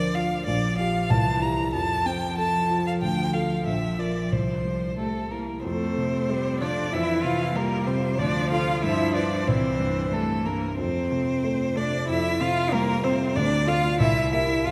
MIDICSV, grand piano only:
0, 0, Header, 1, 2, 480
1, 0, Start_track
1, 0, Key_signature, -1, "major"
1, 0, Tempo, 634921
1, 352, Time_signature, 2, 2, 24, 8
1, 2273, Tempo, 659341
1, 4193, Tempo, 643777
1, 10956, End_track
2, 0, Start_track
2, 0, Title_t, "Grand piano"
2, 0, Program_c, 0, 0
2, 0, Control_c, 0, 64, 127
2, 0, Note_on_c, 0, 38, 47
2, 0, Note_on_c, 0, 62, 39
2, 0, Note_on_c, 0, 70, 43
2, 117, Note_on_c, 0, 65, 36
2, 257, Note_off_c, 0, 70, 0
2, 326, Note_off_c, 0, 38, 0
2, 354, Note_off_c, 0, 65, 0
2, 358, Note_on_c, 0, 34, 49
2, 363, Control_c, 0, 64, 0
2, 366, Note_off_c, 0, 62, 0
2, 467, Control_c, 0, 64, 127
2, 597, Note_on_c, 0, 65, 37
2, 599, Note_on_c, 0, 67, 38
2, 810, Note_off_c, 0, 65, 0
2, 811, Note_off_c, 0, 67, 0
2, 820, Note_off_c, 0, 34, 0
2, 832, Note_on_c, 0, 36, 51
2, 845, Control_c, 0, 64, 0
2, 977, Control_c, 0, 64, 127
2, 1073, Note_on_c, 0, 64, 33
2, 1077, Note_on_c, 0, 67, 38
2, 1287, Note_off_c, 0, 64, 0
2, 1290, Note_off_c, 0, 67, 0
2, 1297, Note_off_c, 0, 36, 0
2, 1320, Note_on_c, 0, 41, 47
2, 1324, Control_c, 0, 64, 0
2, 1440, Control_c, 0, 64, 127
2, 1555, Note_on_c, 0, 60, 36
2, 1800, Note_on_c, 0, 69, 37
2, 1938, Note_off_c, 0, 60, 0
2, 2044, Note_on_c, 0, 65, 36
2, 2181, Note_off_c, 0, 69, 0
2, 2250, Note_off_c, 0, 41, 0
2, 2279, Note_off_c, 0, 65, 0
2, 2282, Note_on_c, 0, 38, 42
2, 2286, Control_c, 0, 64, 0
2, 2395, Control_c, 0, 64, 127
2, 2513, Note_on_c, 0, 65, 28
2, 2517, Note_on_c, 0, 69, 32
2, 2724, Note_off_c, 0, 65, 0
2, 2726, Note_off_c, 0, 69, 0
2, 2735, Note_off_c, 0, 38, 0
2, 2751, Note_on_c, 0, 34, 35
2, 2760, Control_c, 0, 64, 0
2, 2905, Control_c, 0, 64, 127
2, 2984, Note_on_c, 0, 65, 24
2, 2987, Note_on_c, 0, 70, 25
2, 3203, Note_off_c, 0, 65, 0
2, 3205, Note_off_c, 0, 70, 0
2, 3217, Note_off_c, 0, 34, 0
2, 3229, Note_on_c, 0, 36, 30
2, 3241, Control_c, 0, 64, 0
2, 3346, Control_c, 0, 64, 127
2, 3469, Note_on_c, 0, 55, 24
2, 3720, Note_on_c, 0, 67, 26
2, 3856, Note_off_c, 0, 55, 0
2, 3950, Note_on_c, 0, 64, 23
2, 4101, Note_off_c, 0, 67, 0
2, 4164, Note_off_c, 0, 36, 0
2, 4191, Note_off_c, 0, 64, 0
2, 4196, Note_on_c, 0, 41, 40
2, 4206, Control_c, 0, 64, 0
2, 4311, Control_c, 0, 64, 127
2, 4440, Note_on_c, 0, 48, 28
2, 4678, Note_on_c, 0, 57, 34
2, 4820, Note_off_c, 0, 48, 0
2, 4914, Note_on_c, 0, 48, 32
2, 5057, Note_off_c, 0, 57, 0
2, 5123, Note_off_c, 0, 41, 0
2, 5147, Note_on_c, 0, 41, 44
2, 5151, Note_off_c, 0, 48, 0
2, 5164, Control_c, 0, 64, 0
2, 5281, Control_c, 0, 64, 127
2, 5385, Note_on_c, 0, 48, 35
2, 5616, Note_on_c, 0, 55, 38
2, 5764, Note_off_c, 0, 48, 0
2, 5852, Note_on_c, 0, 48, 35
2, 5998, Note_off_c, 0, 55, 0
2, 6067, Note_off_c, 0, 41, 0
2, 6088, Note_on_c, 0, 38, 47
2, 6093, Note_off_c, 0, 48, 0
2, 6110, Control_c, 0, 64, 0
2, 6225, Control_c, 0, 64, 127
2, 6330, Note_on_c, 0, 65, 36
2, 6331, Note_on_c, 0, 69, 37
2, 6548, Note_off_c, 0, 65, 0
2, 6549, Note_off_c, 0, 69, 0
2, 6556, Note_off_c, 0, 38, 0
2, 6574, Note_on_c, 0, 43, 48
2, 6590, Control_c, 0, 64, 0
2, 6690, Control_c, 0, 64, 127
2, 6809, Note_on_c, 0, 65, 33
2, 6815, Note_on_c, 0, 71, 33
2, 7029, Note_off_c, 0, 65, 0
2, 7031, Note_off_c, 0, 71, 0
2, 7041, Note_off_c, 0, 43, 0
2, 7053, Note_on_c, 0, 36, 40
2, 7071, Control_c, 0, 64, 0
2, 7175, Control_c, 0, 64, 127
2, 7289, Note_on_c, 0, 43, 31
2, 7540, Note_on_c, 0, 55, 31
2, 7682, Note_off_c, 0, 43, 0
2, 7783, Note_on_c, 0, 43, 30
2, 7931, Note_off_c, 0, 55, 0
2, 7998, Note_off_c, 0, 36, 0
2, 8028, Note_off_c, 0, 43, 0
2, 8029, Note_on_c, 0, 41, 44
2, 8041, Control_c, 0, 64, 0
2, 8184, Control_c, 0, 64, 127
2, 8272, Note_on_c, 0, 48, 31
2, 8515, Note_on_c, 0, 57, 37
2, 8660, Note_off_c, 0, 48, 0
2, 8755, Note_on_c, 0, 48, 31
2, 8901, Note_off_c, 0, 57, 0
2, 8968, Note_off_c, 0, 41, 0
2, 8996, Note_off_c, 0, 48, 0
2, 9003, Note_on_c, 0, 41, 47
2, 9010, Control_c, 0, 64, 0
2, 9119, Control_c, 0, 64, 127
2, 9237, Note_on_c, 0, 48, 38
2, 9477, Note_on_c, 0, 55, 44
2, 9614, Note_off_c, 0, 48, 0
2, 9707, Note_on_c, 0, 48, 43
2, 9852, Note_off_c, 0, 55, 0
2, 9918, Note_off_c, 0, 41, 0
2, 9943, Note_off_c, 0, 48, 0
2, 9948, Note_on_c, 0, 38, 60
2, 9957, Control_c, 0, 64, 0
2, 10092, Control_c, 0, 64, 127
2, 10177, Note_on_c, 0, 65, 41
2, 10180, Note_on_c, 0, 74, 46
2, 10396, Note_off_c, 0, 65, 0
2, 10398, Note_off_c, 0, 74, 0
2, 10411, Note_off_c, 0, 38, 0
2, 10423, Note_on_c, 0, 36, 54
2, 10437, Control_c, 0, 64, 0
2, 10553, Control_c, 0, 64, 127
2, 10675, Note_on_c, 0, 70, 38
2, 10676, Note_on_c, 0, 67, 32
2, 10893, Note_off_c, 0, 67, 0
2, 10893, Note_off_c, 0, 70, 0
2, 10898, Note_off_c, 0, 36, 0
2, 10913, Note_on_c, 0, 41, 42
2, 10926, Control_c, 0, 64, 0
2, 10956, Note_off_c, 0, 41, 0
2, 10956, End_track
0, 0, End_of_file